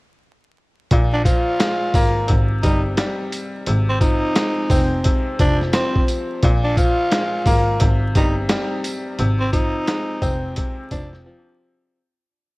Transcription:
0.91 1.34 A#1 loud
0.91 2.30 A#2 medium
0.91 kick loud
0.91 closed hi-hat medium
1.13 1.24 D4 medium
1.25 2.29 F3 medium
1.25 2.25 F4 medium
1.25 kick medium
1.25 closed hi-hat medium
1.25 tambourine medium
1.59 2.28 G#3 medium
1.59 snare loud
1.59 closed hi-hat loud
1.94 2.21 G#1 medium
1.94 2.29 A#3 medium
1.94 kick loud
1.94 open hi-hat soft
1.94 tambourine medium
2.28 2.56 G#1 loud
2.28 3.66 C3 medium
2.28 kick loud
2.28 closed hi-hat loud
2.63 2.90 G1 medium
2.63 2.96 G3 medium
2.63 2.83 D#4 medium
2.63 kick medium
2.63 closed hi-hat medium
2.63 tambourine medium
2.97 3.67 G3 medium
2.97 snare loud
2.97 closed hi-hat medium
3.32 closed hi-hat medium
3.32 tambourine medium
3.67 4.10 G#1 loud
3.67 5.03 C3 medium
3.67 closed hi-hat medium
3.90 4.01 C4 medium
4.00 5.38 F3 medium
4.00 5.01 D#4 medium
4.00 kick medium
4.00 closed hi-hat medium
4.00 tambourine medium
4.36 6.08 G#3 medium
4.36 snare loud
4.36 closed hi-hat loud
4.70 4.97 F1 medium
4.70 6.43 C4 loud
4.70 kick loud
4.70 open hi-hat soft
4.70 tambourine medium
5.04 6.43 C3 medium
5.04 kick loud
5.04 closed hi-hat medium
5.39 5.66 F1 medium
5.39 5.73 F3 medium
5.39 5.59 D4 medium
5.39 kick loud
5.39 closed hi-hat medium
5.39 tambourine medium
5.61 snare soft
5.73 6.43 F3 medium
5.73 6.05 C4 medium
5.73 snare loud
5.73 closed hi-hat medium
5.96 kick loud
6.08 closed hi-hat medium
6.08 tambourine medium
6.42 6.86 A#1 loud
6.42 7.81 A#2 medium
6.42 kick loud
6.42 closed hi-hat medium
6.64 6.76 D4 medium
6.77 7.81 F3 medium
6.77 7.77 F4 medium
6.77 kick medium
6.77 closed hi-hat medium
6.77 tambourine medium
7.11 7.80 G#3 medium
7.11 snare loud
7.11 closed hi-hat loud
7.46 7.72 G#1 loud
7.46 7.81 A#3 loud
7.46 kick loud
7.46 open hi-hat soft
7.46 tambourine medium
7.80 8.08 G#1 loud
7.80 9.18 C3 medium
7.80 kick loud
7.80 closed hi-hat medium
8.15 8.42 G1 medium
8.15 8.48 G3 medium
8.15 8.35 D#4 medium
8.15 kick medium
8.15 closed hi-hat medium
8.15 tambourine medium
8.49 9.19 G3 medium
8.49 snare loud
8.49 closed hi-hat medium
8.84 closed hi-hat medium
8.84 tambourine medium
9.19 9.62 G#1 loud
9.19 10.55 C3 medium
9.19 closed hi-hat medium
9.40 9.52 C4 medium
9.52 10.90 F3 medium
9.52 10.52 D#4 medium
9.52 kick loud
9.52 closed hi-hat medium
9.52 tambourine medium
9.87 11.60 G#3 medium
9.87 snare loud
9.87 closed hi-hat loud
10.22 10.48 F1 medium
10.22 11.94 C4 loud
10.22 kick loud
10.22 closed hi-hat medium
10.22 tambourine medium
10.56 11.95 C3 medium
10.56 kick loud
10.56 closed hi-hat medium
10.91 11.18 F1 medium
10.91 11.25 F3 medium
10.91 11.11 D4 medium
10.91 kick medium
10.91 closed hi-hat medium
10.91 tambourine medium
11.13 snare soft
11.26 11.95 F3 medium

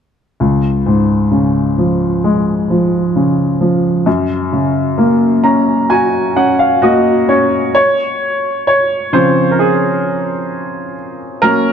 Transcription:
0.40 4.02 C#2 soft
0.86 2.66 G#2 soft
1.32 3.11 C#3 soft
1.78 2.69 F3 soft
2.24 4.03 G#3 soft
2.70 3.59 F3 soft
3.16 4.04 C#3 soft
3.61 4.05 F3 soft
4.06 7.71 F#2 medium
4.52 6.32 C#3 soft
4.98 6.78 A#3 soft
5.44 6.35 C#4 soft
5.44 5.86 A#5 medium
5.90 6.80 F#4 soft
5.90 6.33 G#5 medium
6.36 7.27 C#4 soft
6.36 6.58 F#5 medium
6.59 6.81 F5 medium
6.82 7.72 A#3 soft
6.82 7.77 F#4 medium
6.82 7.26 D#5 medium
7.29 7.74 C#4 soft
7.29 7.72 C#5 medium
7.75 8.66 C#5 medium
8.67 9.15 C#5 medium
9.13 11.39 C#3 soft
9.13 11.39 F3 soft
9.13 11.40 C4 soft
9.13 9.54 C5 medium
9.51 9.59 A#4 soft
9.59 10.93 G#4 medium
11.42 11.73 F#3 soft
11.42 11.73 A#3 soft
11.42 11.73 C#4 soft
11.42 11.73 A#4 medium

